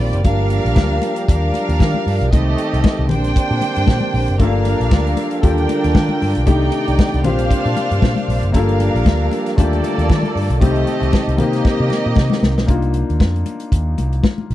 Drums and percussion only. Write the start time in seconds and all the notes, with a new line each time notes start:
0.00 open hi-hat
0.13 closed hi-hat
0.24 kick, closed hi-hat, muted conga
0.50 closed hi-hat, muted conga
0.66 closed hi-hat
0.76 kick, snare, high conga
1.02 closed hi-hat, muted conga
1.16 closed hi-hat
1.28 kick, closed hi-hat
1.54 closed hi-hat, muted conga
1.69 closed hi-hat
1.79 kick, snare, high conga
1.94 high conga
2.08 open hi-hat
2.21 closed hi-hat
2.33 kick, closed hi-hat, muted conga
2.58 closed hi-hat, muted conga
2.74 closed hi-hat
2.84 kick, snare, high conga
3.09 closed hi-hat, muted conga, low conga
3.24 snare, closed hi-hat
3.36 kick, closed hi-hat
3.62 closed hi-hat, muted conga
3.76 closed hi-hat
3.87 kick, snare, high conga
4.01 high conga
4.15 open hi-hat
4.28 closed hi-hat
4.39 kick, closed hi-hat, muted conga
4.65 closed hi-hat, muted conga
4.81 closed hi-hat
4.91 kick, snare, high conga
5.07 closed hi-hat
5.17 closed hi-hat, muted conga
5.31 closed hi-hat
5.43 kick, closed hi-hat
5.58 closed hi-hat
5.69 closed hi-hat, muted conga
5.84 closed hi-hat
5.94 kick, snare, high conga
6.09 high conga
6.22 open hi-hat
6.35 closed hi-hat
6.46 kick, closed hi-hat, muted conga
6.72 closed hi-hat
6.88 closed hi-hat
6.99 kick, snare, high conga
7.14 closed hi-hat
7.24 closed hi-hat, muted conga, low conga
7.38 closed hi-hat
7.51 kick, closed hi-hat
7.66 closed hi-hat
7.77 closed hi-hat, muted conga
7.91 closed hi-hat
8.02 kick, snare, high conga
8.16 closed hi-hat, high conga
8.30 open hi-hat
8.43 closed hi-hat
8.54 kick, closed hi-hat, muted conga
8.69 closed hi-hat
8.80 closed hi-hat, muted conga
8.96 closed hi-hat
9.06 kick, snare, high conga
9.31 closed hi-hat, muted conga
9.46 snare, closed hi-hat
9.58 kick, closed hi-hat
9.73 closed hi-hat
9.84 closed hi-hat, muted conga
9.99 closed hi-hat
10.09 kick, snare, high conga
10.23 closed hi-hat, high conga
10.37 open hi-hat
10.50 closed hi-hat
10.61 kick, closed hi-hat, muted conga
10.76 closed hi-hat
10.87 closed hi-hat, muted conga
11.03 closed hi-hat
11.13 kick, snare, high conga
11.29 closed hi-hat
11.38 closed hi-hat, muted conga, low conga
11.53 snare, closed hi-hat
11.65 kick, snare
11.90 snare, muted conga
12.16 kick, snare, high conga
12.30 snare, high conga
12.43 snare, high conga
12.58 snare
12.68 kick, closed hi-hat, muted conga
12.82 closed hi-hat
12.94 closed hi-hat, muted conga
13.10 closed hi-hat
13.20 kick, snare, high conga
13.36 closed hi-hat
13.46 closed hi-hat, muted conga
13.60 closed hi-hat
13.72 kick, closed hi-hat
13.98 closed hi-hat, muted conga
14.13 closed hi-hat
14.23 kick, snare, high conga
14.38 high conga
14.51 open hi-hat